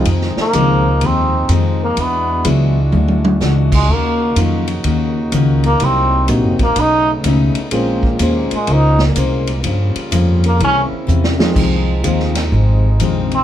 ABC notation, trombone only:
X:1
M:4/4
L:1/8
Q:"Swing" 1/4=125
K:Fphr
V:1 name="Trombone"
z B,3 C2 z B, | =B,2 z4 z ^G, | B,2 z4 z B, | C2 z B, ^D z3 |
z3 A, E z3 | z3 B, D z3 | z6 z C |]